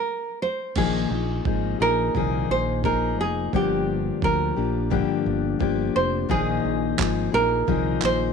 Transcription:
Already playing: nylon-string guitar A#4
0.42 nylon-string guitar C5
0.76 fingered electric bass A#1, steel-string acoustic guitar A#2 D#3 F3 A#3 D#4 G#4, nylon-string guitar G#4, kick, crash
1.10 fingered electric bass A#1, steel-string acoustic guitar F3 A#3 D#4 G#4
1.45 fingered electric bass G#1, steel-string acoustic guitar F3 A#3 D#4 G#4, kick
1.80 fingered electric bass A#1, steel-string acoustic guitar F3 A#3 D#4 G#4, nylon-string guitar A#4
2.15 fingered electric bass C2, steel-string acoustic guitar A#2 D#3 F3 A#3 D#4 G#4, kick
2.49 fingered electric bass A#1, nylon-string guitar C5
2.83 steel-string acoustic guitar F3 A#3 D#4 G#4, nylon-string guitar A#4, kick
3.19 fingered electric bass F1, nylon-string guitar G#4
3.53 fingered electric bass G1, steel-string acoustic guitar G2 D3 F3 A#3 D4 G4, nylon-string guitar G4, kick
4.22 fingered electric bass D2, steel-string acoustic guitar F3 A#3 D4 G4, nylon-string guitar A#4, kick
4.56 fingered electric bass A#1, steel-string acoustic guitar F3 A#3 D4 G4
4.90 steel-string acoustic guitar G2 D3 F3 A#3 D4 G4, kick
5.26 fingered electric bass G1
5.59 fingered electric bass G1, steel-string acoustic guitar F3 A#3 D4 G4, kick
5.96 fingered electric bass F1, nylon-string guitar C5
6.29 fingered electric bass A#1, steel-string acoustic guitar A#2 D#3 F3 A#3 D#4 G#4, nylon-string guitar G#4, kick
6.65 fingered electric bass A#1
6.97 fingered electric bass G#1, steel-string acoustic guitar F3 A#3 D#4 G#4, kick, clap
7.32 fingered electric bass A#1, steel-string acoustic guitar F3 A#3 D#4 G#4, nylon-string guitar A#4
7.67 fingered electric bass C2, steel-string acoustic guitar A#2 D#3 F3 A#3 D#4 G#4, kick
8.02 fingered electric bass A#1, nylon-string guitar C5, clap

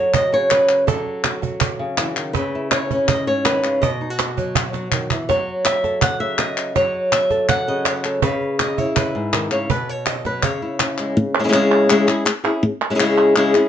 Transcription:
Already playing: nylon-string guitar F#3 F#4 A4 C#5
0.14 nylon-string guitar D#5, cajon bass, clap
0.32 nylon-string guitar C#3 C#5
0.50 nylon-string guitar B4, cajon slap, clap
0.69 nylon-string guitar F#4, clap
0.87 nylon-string guitar F#3 A4, cajon bass
1.07 cajon slap
1.24 nylon-string guitar F#4, cajon slap, clap
1.42 nylon-string guitar F#4, cajon bass
1.60 cajon bass, clap
1.79 nylon-string guitar C#3
1.98 nylon-string guitar E3, cajon slap, clap
2.16 nylon-string guitar D#3, clap
2.33 nylon-string guitar C#3 B4, cajon bass, cajon slap
2.55 nylon-string guitar E4
2.71 nylon-string guitar C#5, cajon slap, clap
2.91 nylon-string guitar C#4, cajon bass
3.08 nylon-string guitar D#5, cajon bass, clap
3.27 nylon-string guitar G#2 C#5
3.45 nylon-string guitar D#3 B4, cajon slap, clap
3.64 nylon-string guitar C#3, clap
3.82 nylon-string guitar B2 D#5, cajon bass
4.01 nylon-string guitar D#4, cajon slap
4.10 nylon-string guitar F#4
4.19 cajon slap, clap
4.37 nylon-string guitar F#3, cajon bass
4.55 nylon-string guitar F#4, cajon bass, clap
4.73 nylon-string guitar F#3, cajon slap
4.92 nylon-string guitar D#3, cajon bass, clap
5.10 nylon-string guitar E3, cajon bass, clap
5.29 nylon-string guitar F#3 C#5, cajon bass, cajon slap
5.48 cajon slap
5.65 nylon-string guitar E5, cajon slap, clap
5.84 nylon-string guitar A4, cajon bass, cajon slap
6.02 nylon-string guitar F#5, cajon bass, clap
6.20 nylon-string guitar C#3 E5
6.38 nylon-string guitar D#5, cajon slap, clap
6.57 clap
6.75 nylon-string guitar F#3 C#5, cajon bass, cajon slap
7.12 nylon-string guitar E5, cajon slap, clap
7.30 nylon-string guitar A4, cajon bass, cajon slap
7.49 nylon-string guitar F#5, cajon bass, clap
7.68 nylon-string guitar C#3 D#5
7.85 nylon-string guitar C#5, cajon slap, clap
8.04 nylon-string guitar A4, clap
8.22 nylon-string guitar C#3 B4, cajon bass
8.41 cajon slap
8.60 nylon-string guitar D#5, cajon slap, clap
8.78 nylon-string guitar E4 C#5, cajon bass
8.96 nylon-string guitar B4, cajon bass, clap
9.15 nylon-string guitar G#2
9.33 nylon-string guitar D#3, cajon slap, clap
9.51 nylon-string guitar C#3 C#5, clap
9.70 nylon-string guitar B2 B4, cajon bass
9.89 nylon-string guitar C#5, cajon slap
10.06 nylon-string guitar D#5, cajon slap, clap
10.25 nylon-string guitar F#3 B4, cajon bass, cajon slap
10.43 nylon-string guitar C#3 C#5, cajon bass, clap
10.62 nylon-string guitar E4
10.80 nylon-string guitar C#4, cajon slap, clap
10.98 nylon-string guitar G#3, clap
11.17 muted nylon-string guitar stroke
11.39 nylon-string guitar G#3 C#4 E4 G#4
11.44 nylon-string guitar G#3 C#4 E4 G#4
11.48 nylon-string guitar G#3 C#4 E4 G#4
11.53 nylon-string guitar C#3 G#3 C#4 E4 G#4, clap
11.89 nylon-string guitar C#3 G#3 C#4 E4 G#4, clap
12.07 nylon-string guitar C#4 E4 G#4, clap
12.25 muted nylon-string guitar stroke, clap
12.44 nylon-string guitar C#4 E4 G#4
12.63 muted nylon-string guitar stroke
12.90 nylon-string guitar G#3 C#4 E4 G#4
12.95 nylon-string guitar G#3 C#4 E4 G#4
12.99 nylon-string guitar C#3 G#3 C#4 E4 G#4, clap
13.36 nylon-string guitar C#3 G#3 C#4 E4 G#4, clap
13.54 nylon-string guitar C#4 E4 G#4, clap

